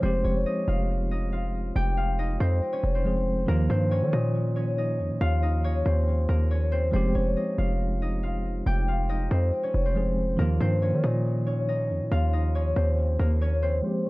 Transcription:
Already playing: A#3 D#4 F4 A#4 D#5
0.01 F1 F3 G#3 C4 C5
0.05 G4
0.24 F1 C#4 C#5
0.46 D#4 D#5
0.68 F1 F4 F5
1.11 D#4 D#5
1.32 F4 F5
1.76 F1 G4 G5
1.97 F4 F5
2.19 D#4 D#5
2.40 F2 C4 C5
2.73 C#4 C#5
2.83 F1
2.95 C4 C5
3.04 F3 G#3 C4 G#4
3.46 D#2 D#3 F3 A#3 A#4
3.51 F4
3.70 G2 C4 C5
3.91 C#4 C#5
4.02 D#3
4.13 A#2 D#4 D#5
4.56 C#4 C#5
4.78 D#4 D#5
4.99 F2
5.10 A#2
5.21 D#2 F4 F5
5.42 D#4 D#5
5.64 C#4 C#5
5.85 D#2 C4 C5
6.29 D#2 A#3 A#4
6.51 C#4 C#5
6.72 C4 C5
6.91 F1 F3 G#3 C4 C5
6.96 G4
7.15 F1 C#4 C#5
7.36 D#4 D#5
7.58 F1 F4 F5
8.02 D#4 D#5
8.23 F4 F5
8.66 F1 G4 G5
8.88 F4 F5
9.09 D#4 D#5
9.31 F2 C4 C5
9.63 C#4 C#5
9.74 F1
9.85 C4 C5
9.95 F3 G#3 C4 G#4
10.37 D#2 D#3 F3 A#3 A#4
10.42 F4
10.61 G2 C4 C5
10.82 C#4 C#5
10.93 D#3
11.03 A#2 D#4 D#5
11.47 C#4 C#5
11.69 D#4 D#5
11.90 F2
12.01 A#2
12.12 D#2 F4 F5
12.33 D#4 D#5
12.55 C#4 C#5
12.76 D#2 C4 C5
13.19 D#2 A#3 A#4
13.41 C#4 C#5
13.62 C4 C5
13.82 F3 G#3 C4 C5
13.87 G4
14.05 C#4 C#5

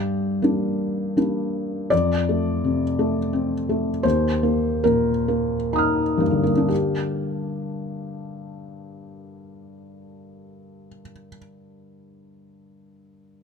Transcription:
Already playing: G2 G4
0.42 G3 A#3 D4
1.17 G3 A#3 D4
1.90 F2 D5
2.29 A3
2.64 C3
2.99 A3
3.33 C4
3.69 A3
4.03 D#2 C5
4.43 A#3
4.84 A#2 A#4
5.28 A#3
5.73 D#4 A#5 D#6
5.78 F6
6.18 G2 A#3
6.31 D3
6.43 A#3
6.57 D4
6.68 G4

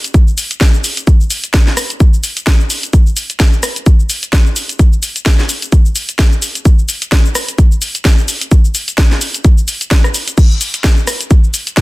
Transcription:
0.04 closed hi-hat, cabasa
0.14 kick, closed hi-hat, cabasa
0.28 cabasa
0.38 open hi-hat, cabasa
0.51 closed hi-hat, cabasa
0.61 kick, snare, closed hi-hat, cabasa
0.74 cabasa
0.84 open hi-hat, cabasa
0.97 closed hi-hat, cabasa
1.07 kick, closed hi-hat, cabasa
1.21 cabasa
1.30 open hi-hat, cabasa
1.44 closed hi-hat, cabasa
1.54 kick, snare, closed hi-hat, cabasa
1.67 snare, cabasa
1.77 cross-stick, open hi-hat, cabasa
1.90 closed hi-hat, cabasa
2.00 kick, closed hi-hat, cabasa
2.14 cabasa
2.24 open hi-hat, cabasa
2.37 closed hi-hat, cabasa
2.47 kick, snare, closed hi-hat, cabasa
2.60 cabasa
2.70 open hi-hat, cabasa
2.83 closed hi-hat, cabasa
2.93 kick, closed hi-hat, cabasa
3.07 cabasa
3.17 open hi-hat, cabasa
3.30 closed hi-hat, cabasa
3.40 kick, snare, closed hi-hat, cabasa
3.53 cabasa
3.63 cross-stick, open hi-hat, cabasa
3.76 closed hi-hat, cabasa
3.86 kick, closed hi-hat, cabasa
4.00 cabasa
4.10 open hi-hat, cabasa
4.23 closed hi-hat, cabasa
4.33 kick, snare, closed hi-hat, cabasa
4.46 cabasa
4.56 open hi-hat, cabasa
4.69 closed hi-hat, cabasa
4.79 kick, closed hi-hat, cabasa
4.93 cabasa
5.03 open hi-hat, cabasa
5.16 closed hi-hat, cabasa
5.26 kick, snare, closed hi-hat, cabasa
5.39 snare, cabasa
5.49 open hi-hat, cabasa
5.62 closed hi-hat, cabasa
5.72 kick, closed hi-hat, cabasa
5.86 cabasa
5.96 open hi-hat, cabasa
6.09 closed hi-hat, cabasa
6.19 kick, snare, closed hi-hat, cabasa
6.32 cabasa
6.42 open hi-hat, cabasa
6.55 closed hi-hat, cabasa
6.65 kick, closed hi-hat, cabasa
6.79 cabasa
6.89 open hi-hat, cabasa
7.02 closed hi-hat, cabasa
7.12 kick, snare, closed hi-hat, cabasa
7.25 cabasa
7.35 cross-stick, open hi-hat, cabasa
7.49 closed hi-hat, cabasa
7.58 kick, closed hi-hat, cabasa
7.72 cabasa
7.82 open hi-hat, cabasa
7.95 closed hi-hat, cabasa
8.05 kick, snare, closed hi-hat, cabasa
8.18 cabasa
8.28 open hi-hat, cabasa
8.41 closed hi-hat, cabasa
8.51 kick, closed hi-hat, cabasa
8.65 cabasa
8.75 open hi-hat, cabasa
8.88 closed hi-hat, cabasa
8.98 kick, snare, closed hi-hat, cabasa
9.11 snare, cabasa
9.21 open hi-hat, cabasa
9.34 closed hi-hat, cabasa
9.44 kick, closed hi-hat, cabasa
9.58 cabasa
9.68 open hi-hat, cabasa
9.81 closed hi-hat, cabasa
9.91 kick, snare, closed hi-hat, cabasa
10.04 cross-stick, cabasa
10.14 open hi-hat, cabasa
10.28 closed hi-hat, cabasa
10.38 kick, closed hi-hat, crash, cabasa
10.51 cabasa
10.61 open hi-hat, cabasa
10.74 closed hi-hat, cabasa
10.84 kick, snare, closed hi-hat, cabasa
10.97 cabasa
11.07 cross-stick, open hi-hat, cabasa
11.21 closed hi-hat, cabasa
11.31 kick, closed hi-hat, cabasa
11.44 cabasa
11.54 open hi-hat, cabasa
11.67 closed hi-hat, cabasa
11.77 kick, snare, closed hi-hat, cabasa

